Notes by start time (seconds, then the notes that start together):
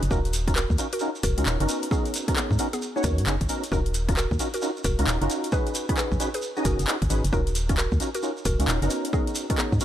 0.03 F#1, closed hi-hat, shekere
0.11 D#1 C#4 D#4 F4 F#4 A#4, kick, shekere
0.25 closed hi-hat, shekere
0.33 open hi-hat, shekere
0.47 C#4 D#4 F4 F#4 A#4, kick, cross-stick, closed hi-hat, shekere
0.56 F#4 A#4, clap, shekere
0.70 D#2, kick, shekere
0.78 C#4 D#4 F4 F#4 A#4, open hi-hat, shekere
0.93 F#4 A#4, closed hi-hat, shekere
0.99 C#4 D#4 F4 F#4 A#4, shekere
1.15 shekere
1.23 D#1 F#4 A#4, kick, cross-stick, open hi-hat, shekere
1.38 C#2 C#4 D#4 F4 F#4 A#4, closed hi-hat, shekere
1.46 D#1, clap, shekere
1.60 F#1 B3 C#4 D#4 F#4 A#4, closed hi-hat, shekere
1.69 open hi-hat, shekere
1.82 closed hi-hat, shekere
1.91 B3 C#4 D#4 F#4 G#4 A#4, kick, shekere
2.05 closed hi-hat, shekere
2.14 open hi-hat, shekere
2.28 B3 C#4 D#4 F#4 A#4, kick, cross-stick, closed hi-hat, shekere
2.36 B3 G#4, clap, shekere
2.51 G#2, kick, shekere
2.59 B3 C#4 D#4 F#4 A#4, open hi-hat, shekere
2.73 B3 G#4, closed hi-hat, shekere
2.82 shekere
2.96 B3 C#4 D#4 F#4 C#5, shekere
3.04 D#2 F#4 A#4, kick, cross-stick, open hi-hat, shekere
3.18 G#2, closed hi-hat, shekere
3.27 F#1 B3 C#4 D#4 F#4 G#4, clap, shekere
3.41 G#1, kick, closed hi-hat, shekere
3.49 B3 C#4 D#4 F#4 A#4, open hi-hat, shekere
3.64 closed hi-hat, shekere
3.72 D#1 C#4 D#4 F4 F#4 A#4, kick, shekere
3.86 closed hi-hat, shekere
3.94 open hi-hat, shekere
4.09 C#4 D#4 F4 F#4 A#4, kick, cross-stick, closed hi-hat, shekere
4.17 F#4 A#4, clap, shekere
4.31 D#2, kick, shekere
4.39 C#4 D#4 F4 F#4 A#4, open hi-hat, shekere
4.54 F#4 A#4, closed hi-hat, shekere
4.62 C#4 D#4 F4 F#4 A#4, shekere
4.77 shekere
4.84 D#1 F#4 A#4, kick, cross-stick, open hi-hat, shekere
4.99 C#2 C#4 D#4 F4 F#4 A#4, closed hi-hat, shekere
5.07 D#1, clap, shekere
5.21 F#1 C#4 D#4 F4 F#4 A#4, closed hi-hat, shekere
5.30 open hi-hat, shekere
5.44 closed hi-hat, shekere
5.52 C#4 D#4 F#4 G#4 B4, kick, shekere
5.66 closed hi-hat, shekere
5.75 open hi-hat, shekere
5.89 C#4 D#4 F#4 G#4 B4, kick, cross-stick, closed hi-hat, shekere
5.97 G#4 B4, clap, shekere
6.12 B1, kick, shekere
6.20 C#4 D#4 F#4 G#4 B4, open hi-hat, shekere
6.34 G#4 B4, closed hi-hat, shekere
6.42 shekere
6.57 C#4 D#4 F#4 G#4 D#5, shekere
6.65 F#1 F#4 A#4, kick, cross-stick, open hi-hat, shekere
6.79 F#1, closed hi-hat, shekere
6.87 C#4 D#4 F#4 G#4 B4, clap, shekere
7.02 G#1, kick, closed hi-hat, shekere
7.10 G#1 C#4 D#4 F#4 G#4 B4, open hi-hat, shekere
7.24 F#1, closed hi-hat, shekere
7.32 D#1 C#4 D#4 F4 F#4 A#4, kick, shekere
7.47 closed hi-hat, shekere
7.55 open hi-hat, shekere
7.69 C#4 D#4 F4 F#4 A#4, kick, cross-stick, closed hi-hat, shekere
7.78 F#4 A#4, clap, shekere
7.92 D#2, kick, shekere
8.00 C#4 D#4 F4 F#4 A#4, open hi-hat, shekere
8.15 F#4 A#4, closed hi-hat, shekere
8.23 C#4 D#4 F4 F#4 A#4, shekere
8.37 shekere
8.45 D#1 F#4 A#4, kick, cross-stick, open hi-hat, shekere
8.60 C#2 C#4 D#4 F4 F#4 A#4, closed hi-hat, shekere
8.68 D#1, clap, shekere
8.82 F#1 B3 C#4 D#4 F#4 A#4, closed hi-hat, shekere
8.90 open hi-hat, shekere
9.05 closed hi-hat, shekere
9.13 B3 C#4 D#4 F#4 G#4 A#4, kick, shekere
9.27 closed hi-hat, shekere
9.35 open hi-hat, shekere
9.50 B3 C#4 D#4 F#4 A#4, kick, cross-stick, closed hi-hat, shekere
9.58 B3 G#4, clap, shekere
9.72 G#2, kick, shekere
9.80 B3 C#4 D#4 F#4 A#4, open hi-hat, shekere